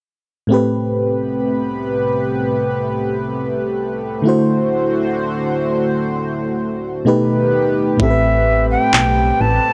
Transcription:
0.47 fm electric piano A2 A3 C4, analog synth pad C3 A3 G4 B4
0.52 fm electric piano G4 B4
4.22 fm electric piano D3 A3 E4, analog synth pad D3 F#4 C5
4.27 fm electric piano F#4 C5
7.05 fm electric piano B2 A3 D#4 G4 B4, analog synth pad D#3 G4 B4
7.97 fm bass A1, fm electric piano A2 A3 C4, analog synth pad A3 C4 G4 B4, flute E5, kick
8.02 fm electric piano G4 A4
8.10 fm electric piano B4
8.71 flute G5
8.94 fm bass B1, clap
9.41 fm bass A1, flute A5

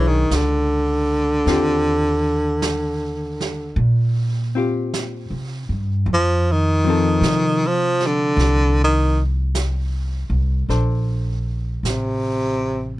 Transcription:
Already playing: upright bass B1, hollow-body jazz guitar E3 D4 G#4 C#5
0.07 baritone saxophone D#3
0.30 upright bass C#2, brush sweep, snare, hi-hat pedal
0.36 baritone saxophone D3
1.46 upright bass D#2, hollow-body jazz guitar C4 F4 G4, brush sweep, snare
2.62 brush sweep, snare, hi-hat pedal
3.40 snare
3.76 upright bass A#2, brush sweep
4.55 hollow-body jazz guitar C4 F4 G4
4.94 brush sweep, snare, hi-hat pedal
5.30 upright bass C3
5.69 upright bass G2
6.06 upright bass F2, brush sweep
6.13 baritone saxophone F3
6.51 baritone saxophone D#3
6.84 hollow-body jazz guitar F3 C4
6.90 hollow-body jazz guitar A4
7.21 upright bass C3, brush sweep, snare, hi-hat pedal
7.67 baritone saxophone F3
8.00 snare
8.06 baritone saxophone D3
8.37 upright bass C2, brush sweep, snare
8.84 baritone saxophone D#3
9.55 brush sweep, snare, hi-hat pedal
10.30 upright bass C2
10.69 upright bass A#1, hollow-body jazz guitar D4 A4 C5, brush sweep, snare
11.83 upright bass A1, brush sweep, snare, hi-hat pedal
11.89 baritone saxophone C3

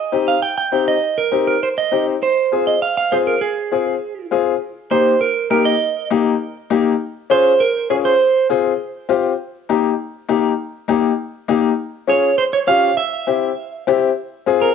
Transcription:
Already playing: clean electric guitar D#5
0.12 upright piano C4 D#4 G4
0.28 clean electric guitar F5
0.42 clean electric guitar G5
0.58 clean electric guitar G5
0.72 upright piano C4 D#4 G4
0.88 clean electric guitar D#5
1.18 clean electric guitar A#4
1.32 upright piano C4 D#4 G4
1.47 clean electric guitar A#4
1.63 clean electric guitar C5
1.78 clean electric guitar D#5
1.92 upright piano C4 D#4 G4
2.23 clean electric guitar C5
2.52 upright piano C4 F4 G#4
2.67 clean electric guitar D#5
2.82 clean electric guitar F5
2.97 clean electric guitar F5
3.12 upright piano C4 F4 G#4, clean electric guitar C5
3.27 clean electric guitar A#4
3.41 clean electric guitar G#4
3.72 upright piano C4 F4 G#4
4.31 upright piano C4 F4 G#4
4.90 upright piano A#3 D#4 G4, clean electric guitar C5
5.21 clean electric guitar A#4
5.50 upright piano A#3 D#4 G4, clean electric guitar A#4
5.65 clean electric guitar D#5
6.11 upright piano A#3 D#4 G4
6.70 upright piano A#3 D#4 G4
7.30 upright piano C#4 F4 G#4, clean electric guitar C5
7.60 clean electric guitar A#4
7.90 upright piano C#4 F4 G#4, clean electric guitar G#4
8.05 clean electric guitar C5
8.50 upright piano C4 F4 G#4
9.09 upright piano C4 F4 G4
9.69 upright piano A#3 D#4 G4
10.29 upright piano A#3 D#4 G4
10.88 upright piano A#3 D#4 G4
11.48 upright piano A#3 D#4 G4
12.08 upright piano C#4 F4 G#4, clean electric guitar C#5
12.38 clean electric guitar C5
12.53 clean electric guitar C#5
12.67 upright piano C#4 F4 G4, clean electric guitar F5
12.97 clean electric guitar E5
13.27 upright piano C4 E4 G4
13.87 upright piano C4 E4 G4
14.46 upright piano C4 F4 G#4
14.62 clean electric guitar A#4

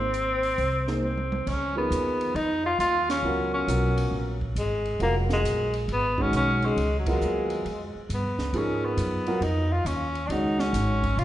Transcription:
Already playing: upright bass G#1, tenor saxophone C4
0.14 closed hi-hat
0.43 open hi-hat
0.58 upright bass C2, open hi-hat
0.87 upright piano A#3 D#4 G#4 C5, snare
1.03 tenor saxophone C4, mid tom
1.17 mid tom
1.32 mid tom
1.46 upright bass C#2, tenor saxophone C#4, kick, crash
1.76 upright piano F3 D#4 G#4 A#4, tenor saxophone B3
1.90 upright bass D#2, hi-hat pedal, ride
2.21 ride
2.34 upright bass F2, tenor saxophone D#4, ride
2.66 tenor saxophone F4
2.79 upright bass D#2, tenor saxophone F4, hi-hat pedal, ride
3.10 tenor saxophone C#4, snare, ride
3.22 upright bass C#2, upright piano F#3 B3 F4 A#4
3.54 tenor saxophone C#4
3.67 upright bass B1, upright piano F#3 B3 F4 A#4, hi-hat pedal, ride
3.98 ride
4.11 upright bass A#1
4.41 kick
4.55 upright bass G#1, tenor saxophone G#3, hi-hat pedal, ride
4.85 ride
5.00 upright bass F1, upright piano F#3 B3 F4 A#4, tenor saxophone A#3, ride
5.30 tenor saxophone G#3, snare
5.43 upright bass A#1, hi-hat pedal, ride
5.74 ride
5.88 upright bass G#1, ride
5.93 tenor saxophone B3
6.18 upright piano D#3 G#3 C#4 F#4, kick
6.22 tenor saxophone C#4
6.32 upright bass B1, hi-hat pedal, ride
6.37 tenor saxophone C#4
6.62 tenor saxophone G#3, ride
6.76 upright bass C#2, ride
6.99 tenor saxophone F#3
7.06 upright piano F#3 B3 F4 A#4, tenor saxophone G#3, kick, ride
7.21 upright bass D#2, hi-hat pedal
7.50 ride
7.65 upright bass F2, ride
7.95 muted upright bass stroke
8.09 upright bass G2, hi-hat pedal, ride
8.14 tenor saxophone B3
8.23 upright bass F2
8.38 upright bass C#2, snare
8.53 upright bass G#2, upright piano F3 D#4 G#4 A#4, ride
8.57 tenor saxophone C#4
8.85 tenor saxophone B3
8.97 upright bass F#2, hi-hat pedal, ride
9.26 upright piano F#3 B3 F4 A#4, ride
9.41 upright bass F2, tenor saxophone D#4, ride
9.72 tenor saxophone F4
9.85 upright bass D#2, tenor saxophone C#4, hi-hat pedal, ride
10.15 ride
10.27 upright bass C#2, upright piano D#3 G#3 C#4, tenor saxophone D4 D#4, ride
10.32 upright piano F#4
10.59 tenor saxophone C#4, snare
10.73 upright bass G#1, snare, hi-hat pedal, ride
11.03 kick, ride
11.17 upright bass B1, tenor saxophone F4, ride

